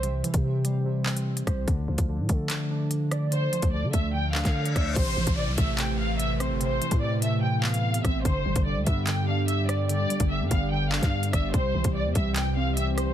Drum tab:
CC |----------------|----------------|----------------|x---------------|
HH |x-xx--x----x-xx-|x--x--x-x---x-x-|x-xx--x----x-xx-|x--x--x-x---x-x-|
CP |----------x-----|--------x-------|----------xx----|--------x-------|
SD |--------------r-|--------------r-|--------------r-|--------------r-|
BD |---o----------o-|o--o--o---------|---o--o----o--o-|o--o--o---------|

CC |----------------|----------------|----------------|----------------|
HH |x-xx--x----x-xx-|x--x--x-x---x-x-|x-xx--x----x-xx-|x--x--x-x---x-x-|
CP |----------x-----|--------x-------|----------xx----|--------x-------|
SD |--------------r-|--------------r-|--------------r-|--------------r-|
BD |---o----------o-|o--o--o---------|---o--o----o--o-|o--o--o---------|